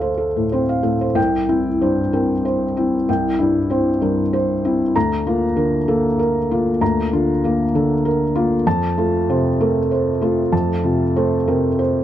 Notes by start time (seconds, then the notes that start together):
Already playing: D2 A4 F5
0.00 C5
0.18 A4
0.37 A2
0.52 C4 C5
0.69 F5
0.83 A2 A4
1.01 C5
1.15 C2 G5
1.49 C4 E4
1.81 G2 C5
2.13 C4 A#4
2.45 C5
2.77 C4 E4
3.09 C2 G5
3.39 G2 E4
3.70 C4 C5
4.01 G2 A#4
4.33 C5
4.65 C4 E4
4.96 D2 A#5
5.27 A#3 F4
5.56 D3 A#4
5.88 A#3 A4
6.19 A#4
6.51 A#3 F4
6.81 D2 A#5
7.13 D3 F4
7.44 A#3 A#4
7.75 D3 A4
8.05 A#4
8.35 A#3 F4
8.67 F2 A5
8.97 A3 F4
9.29 C3 C5
9.60 A3 A#4
9.91 C5
10.21 A3 F4
10.52 F2 A5
10.83 C3 F4
11.16 A3 C5
11.48 C3 A#4
11.79 C5